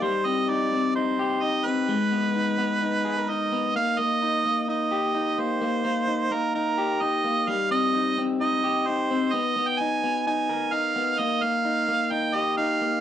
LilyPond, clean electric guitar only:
\new Staff \with { instrumentName = "Clean electric guitar" } { \time 4/4 \key ees \major \tempo 4 = 129 g8 c'8 ees'8 c'8 ees'8 g'8 ees'8 c'8 | aes8 ces'8 ees'8 ces'8 ees'8 aes'16 bes'16 ees'8 ces'8 | bes8 bes8 ees'8 bes8 ees'8 g'8 ees'8 bes8 | bes8 bes8 ees'8 bes8 ees'8 g'8 ees'8 bes8 |
g8 c'8 ees'8 c'8 ees'8 g'8 ees'8 c'8 | ces'8 ces'8 ees'8 ces'8 ees'8 bes'8 ees'8 ces'8 | bes8 bes8 ees'8 bes8 ees'8 g'8 ees'8 bes8 | }